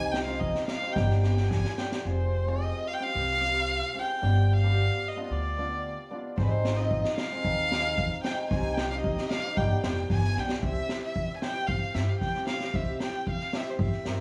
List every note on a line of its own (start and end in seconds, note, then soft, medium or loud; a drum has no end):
0.00 0.52 C2 medium
0.00 0.13 G#5 loud
0.11 0.23 G5 medium
0.11 snare medium
0.24 0.55 C4 medium
0.24 0.55 D#4 medium
0.24 0.55 F4 medium
0.24 0.40 F5 medium
0.24 snare soft
0.39 0.67 D#5 medium
0.39 kick medium
0.55 snare medium
0.67 0.94 F5 loud
0.67 snare medium
0.81 0.96 C4 medium
0.81 0.96 D#4 medium
0.81 0.96 G4 medium
0.92 1.62 G1 loud
0.92 1.18 B3 medium
0.92 1.21 G5 medium
0.92 kick medium
0.92 snare soft
0.97 1.18 D4 medium
0.97 1.19 G4 medium
1.10 snare soft
1.22 1.51 B3 medium
1.22 1.51 D4 medium
1.22 1.52 G4 medium
1.22 1.50 G5 medium
1.22 snare medium
1.37 snare soft
1.48 1.79 G#5 medium
1.48 kick medium
1.48 snare medium
1.64 snare medium
1.78 1.92 B3 medium
1.78 1.92 D4 medium
1.78 1.93 G4 medium
1.78 2.05 G5 medium
1.78 snare medium
1.92 snare medium
2.05 2.71 F1 medium
2.05 2.26 C4 medium
2.05 2.26 F4 medium
2.05 2.27 G#4 medium
2.05 2.50 C5 medium
2.47 2.74 C4 medium
2.47 2.74 F4 medium
2.47 2.74 G#4 medium
2.47 2.89 D#5 medium
2.87 2.95 F5 loud
2.93 3.04 G5 loud
3.00 3.21 C4 medium
3.00 3.22 F4 medium
3.00 3.22 G4 medium
3.00 4.01 F5 loud
3.15 3.80 C2 loud
3.41 3.69 C4 medium
3.41 3.69 F4 medium
3.41 3.69 G4 medium
3.94 4.09 C4 medium
3.94 4.09 F4 medium
3.94 4.09 G#4 medium
3.99 4.54 G5 loud
4.22 4.88 G1 loud
4.22 4.43 B3 medium
4.22 4.43 D4 medium
4.22 4.43 G4 medium
4.53 5.10 F5 loud
4.64 4.91 B3 medium
4.64 4.91 D4 medium
4.64 4.91 G4 medium
5.08 5.25 D#5 loud
5.16 5.37 B3 medium
5.16 5.38 D4 medium
5.16 5.38 F4 medium
5.26 5.34 D#5 medium
5.31 5.95 D2 medium
5.31 6.12 D5 medium
5.58 5.85 B3 medium
5.58 5.85 D4 medium
5.58 5.85 F4 medium
6.11 6.24 B3 medium
6.11 6.25 D4 medium
6.11 6.25 F4 medium
6.36 7.02 G#1 medium
6.36 6.58 C4 medium
6.36 6.59 D#4 medium
6.36 6.58 G#4 medium
6.36 6.44 C5 medium
6.36 kick medium
6.36 snare soft
6.42 6.51 B4 medium
6.50 6.78 C5 medium
6.65 snare medium
6.76 7.04 C4 medium
6.76 7.05 D#4 medium
6.76 7.05 F4 medium
6.76 7.16 D#5 medium
6.76 snare soft
6.91 kick medium
7.04 snare medium
7.17 8.20 F5 loud
7.17 snare medium
7.32 7.52 C4 medium
7.32 7.52 D#4 medium
7.32 7.52 G#4 medium
7.44 8.09 D#2 medium
7.44 kick medium
7.71 7.98 C4 medium
7.71 7.98 D#4 medium
7.71 7.99 G#4 medium
7.71 snare medium
7.98 kick medium
8.23 8.38 C4 medium
8.23 8.38 D#4 medium
8.23 8.38 G#4 medium
8.23 8.49 G5 medium
8.23 snare medium
8.50 9.15 C2 medium
8.50 8.71 C4 medium
8.50 8.71 D#4 medium
8.50 8.71 G4 medium
8.50 8.76 G#5 loud
8.50 kick medium
8.50 snare soft
8.74 8.89 G5 medium
8.74 snare medium
8.91 9.18 C4 medium
8.91 9.18 D#4 medium
8.91 9.18 G4 medium
8.91 9.00 F5 medium
8.91 snare soft
9.01 9.31 D#5 medium
9.01 kick medium
9.18 snare medium
9.29 9.58 F5 loud
9.29 snare medium
9.43 9.57 C4 medium
9.43 9.57 D#4 medium
9.43 9.57 G4 medium
9.57 9.73 G1 medium
9.57 9.79 B3 medium
9.57 9.79 D4 medium
9.57 9.80 G4 medium
9.57 9.83 G5 medium
9.57 kick medium
9.83 10.07 F1 medium
9.83 10.10 B3 medium
9.83 10.10 D4 medium
9.83 10.11 G4 medium
9.83 10.08 G5 medium
9.83 snare medium
9.96 snare soft
10.10 10.34 G1 medium
10.10 10.41 G#5 loud
10.10 kick medium
10.10 snare soft
10.23 snare soft
10.36 10.61 B1 medium
10.36 10.50 B3 medium
10.36 10.50 D4 medium
10.36 10.51 G4 medium
10.36 10.63 G5 medium
10.36 snare soft
10.49 snare medium
10.62 10.79 C2 medium
10.62 11.03 C4 medium
10.62 11.03 E4 medium
10.62 11.03 G4 medium
10.62 11.00 E5 loud
10.62 kick medium
10.89 snare medium
11.04 11.34 E5 medium
11.16 kick medium
11.36 11.43 G#5 medium
11.42 11.69 C4 medium
11.42 11.69 E4 medium
11.42 11.69 G4 medium
11.42 11.68 G5 loud
11.42 snare medium
11.67 11.76 G2 medium
11.67 11.96 F5 medium
11.67 kick medium
11.94 12.11 G2 medium
11.94 12.15 C4 medium
11.94 12.15 E4 medium
11.94 12.15 G4 medium
11.94 12.10 E5 medium
11.94 snare medium
12.09 12.18 F5 medium
12.19 12.44 G5 medium
12.19 kick medium
12.19 snare soft
12.35 12.54 C4 medium
12.35 12.55 E4 medium
12.35 12.55 G4 medium
12.35 snare soft
12.47 12.77 F5 medium
12.47 snare medium
12.60 snare medium
12.74 12.90 C2 loud
12.74 13.14 C4 medium
12.74 13.14 E4 medium
12.74 13.14 G4 medium
12.74 13.01 E5 medium
12.74 kick medium
13.00 13.26 G5 medium
13.00 snare medium
13.27 13.59 F5 medium
13.27 kick medium
13.40 snare soft
13.53 13.79 C4 medium
13.53 13.79 E4 medium
13.53 13.79 G4 medium
13.53 snare medium
13.57 13.72 E5 medium
13.65 snare soft
13.70 13.81 C5 medium
13.79 13.87 G2 medium
13.79 14.20 E5 medium
13.79 kick medium
13.92 snare soft
14.05 14.20 G2 medium
14.05 14.20 C4 medium
14.05 14.20 E4 medium
14.05 14.20 A#4 medium
14.05 snare medium